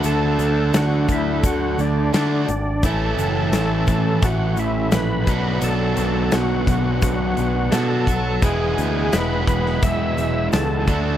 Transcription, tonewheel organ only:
\new Staff \with { instrumentName = "Tonewheel organ" } { \time 4/4 \key e \mixolydian \tempo 4 = 86 a'4 fis'8 e'8 fis'8 d'8 d'4 | a'4 a'4 fis'8 e'8 b'4 | a'4 fis'4 fis'4 a'4 | gis'4 b'8 b'8 e''4 a'4 | }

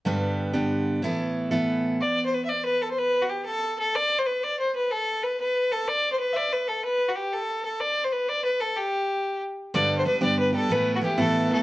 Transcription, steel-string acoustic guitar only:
\new Staff \with { instrumentName = "Steel-string acoustic guitar" } { \time 6/8 \key g \major \tempo 4. = 124 <g, d g b d' g'>4. <g, d g b d' g'>4. | <a, e b e' a'>4. <a, e b e' a'>4. | r2. | r2. |
r2. | r2. | r2. | r2. |
r2. | r2. | <g, d g b d' g'>4 <g b d' g'>8 <g, d g b d' g'>4 <g b d' g'>8 | <a, e a b e'>4 <e a b e'>8 <a, e a b e'>4 <a b e'>8 | }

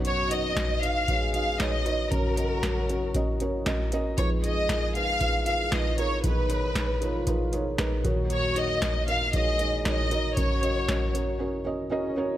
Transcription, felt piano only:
<<
  \new Staff \with { instrumentName = "Felt piano" } { \time 4/4 \key ges \major \tempo 4 = 116 <ees' ges' ces'' des''>8 <ees' ges' ces'' ees''>8 <ges' des''>8 <ees' ges' ces'' ees''>8 <ees' ges' ces'' des''>8 <ees' ges' ces'' ees''>8 <ees' ges' ces'' des''>8 <ees' ges' ces'' des''>8 | <des' ges' bes' des''>8 <des' ges' bes' ees''>8 <des' ges' bes' des''>8 <des' ges' bes' des''>8 <des' ges' bes' ees''>8 <des' ges' bes' des''>8 <des' ges' bes' ees''>8 <des' ges' bes' ees''>8 | <ees' f' aes' ces''>8 <ees' f' aes' ces''>8 <ees' f' aes' bes'>8 <ees' f' aes' ces''>8 <ees' f' aes' ces''>8 <ees' f' aes' ces''>8 <ees' f' aes' ces''>8 <ees' f' aes' bes'>8 | <ees' aes' bes' ces''>8 <ees' aes' bes' des''>8 <ees' aes' bes' des''>8 <ees' aes' bes' des''>8 <ees' aes' bes' ces''>8 <ees' aes' bes' des''>8 <ees' aes' bes' ces''>8 <ees' ges' bes' des''>8~ |
<ees' ges' bes' des''>8 <ees' ges' bes' des''>8 <ees' ges' bes' des''>8 <ees' ges' bes' ees''>8 <ees' ges' bes' des''>8 <ees' ges' bes' des''>8 <ees' ges' bes' des''>8 <ees' ges' bes' ees''>8 | <des' ges' bes' des''>8 <des' ges' bes' ees''>8 <des' ges' bes' ees''>8 <des' ges' bes' des''>8 <des' ges' bes' des''>8 <des' ges' bes' ees''>8 <des' ges' bes' ees''>8 <des' ges' bes' des''>8 | }
  \new Staff \with { instrumentName = "Felt piano" } { \clef bass \time 4/4 \key ges \major <ces, ges,>2.~ <ces, ges,>8 r8 | <ges, des>1 | <f, f>1 | <ces, ces>2.~ <ces, ces>8 <ees, bes,>8~ |
<ees, bes,>2.~ <ees, bes,>8 r8 | <ges, des>1 | }
>>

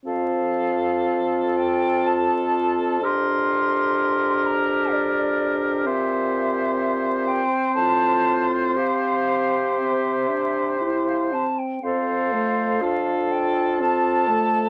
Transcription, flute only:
\new Staff \with { instrumentName = "Flute" } { \time 3/4 \key f \major \tempo 4 = 61 f''4. g''8 a''4 | c'''4. bes''8 d''4 | e''4. g''8 a''8. r16 | f''4 e''4~ e''16 f''16 a''16 g''16 |
f''4. g''8 a''4 | }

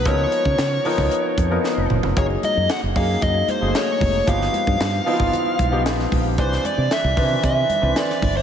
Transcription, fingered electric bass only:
\new Staff \with { instrumentName = "Fingered electric bass" } { \clef bass \time 4/4 \key des \major \tempo 4 = 114 des,8 r16 des16 des8 r16 des,16 r8 f,8 r16 f,,16 ges,,16 f,,16 | ges,,8 r16 ges,16 r16 ges,,16 ges,8 ges,8 r16 ges,,16 r8 f,,8 | g,,8 r16 g,16 g,8 r16 g,,16 r8 b,,8 ais,,8 ais,,8 | c,8 r16 c16 r16 c,16 c8 c8 r16 c,16 r8 g,,8 | }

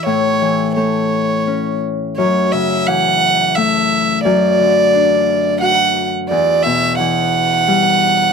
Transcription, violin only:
\new Staff \with { instrumentName = "Violin" } { \time 3/4 \key d \major \tempo 4 = 87 cis''4 cis''4. r8 | cis''8 e''8 fis''4 e''4 | d''2 fis''8. r16 | d''8 e''8 fis''2 | }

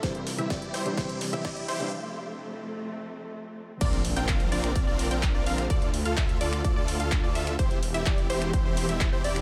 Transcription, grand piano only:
\new Staff \with { instrumentName = "Grand piano" } { \clef bass \time 4/4 \key bes \lydian \tempo 4 = 127 <c e g c'>8. <c e g c'>16 r8. <c e g d'>16 <c e g c'>8. <c e g c'>16 r8. <c e g d'>16 | r1 | r1 | r1 |
r1 | }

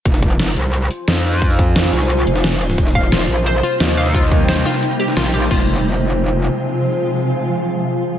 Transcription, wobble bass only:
\new Staff \with { instrumentName = "Wobble bass" } { \clef bass \time 4/4 \key f \minor \tempo 4 = 176 f,,4. c,4 r8 f,4~ | f,4. c,4 f,,4. | ees,,4. bes,,4 r8 ees,4~ | ees,4. r4. bes,,4 |
f,,2. r4 | r1 | }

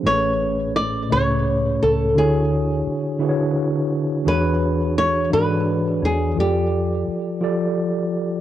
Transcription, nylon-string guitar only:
\new Staff \with { instrumentName = "Nylon-string guitar" } { \time 6/8 \key a \major \tempo 4. = 57 cis''4 d''8 cis''4 a'8 | gis'2~ gis'8 r8 | b'4 cis''8 b'4 gis'8 | g'2~ g'8 r8 | }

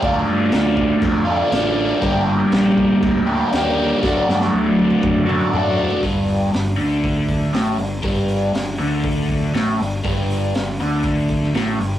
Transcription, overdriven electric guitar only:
\new Staff \with { instrumentName = "Overdriven electric guitar" } { \clef bass \time 4/4 \key g \minor \tempo 4 = 120 <d a d' f'>2~ <d a d' f'>8 <d a d' f'>8 <d a d' f'>4 | <g, d g bes d' g'>2~ <g, d g bes d' g'>8 <g, d g bes d' g'>8 <g, d g bes d' g'>4 | <d fis a d' fis'>2~ <d fis a d' fis'>8 <d fis a d' fis'>8 <d fis a d' fis'>4 | g,4 g,8 d4. a,8 g,8 |
g,4 g,8 d4. a,8 g,8 | g,4 g,8 d4. a,8 g,8 | }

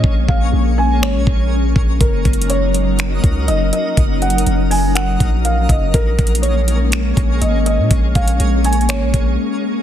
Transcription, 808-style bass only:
\new Staff \with { instrumentName = "808-style bass" } { \clef bass \time 4/4 \key ais \phrygian \tempo 4 = 122 ais,,8 ais,,8 ais,,4 gis,,16 ais,,16 ais,,4 ais,,8 | fis,,8 fis,,2 cis,8 fis,,8 r8 | fis,,4 fis,,4. ais,,4 fis,,8 | ais,,8 ais,,2 ais,,8 gis,,8. ais,16 |
ais,,8 ais,,8 ais,,4 gis,,16 ais,,16 ais,,8 r4 | }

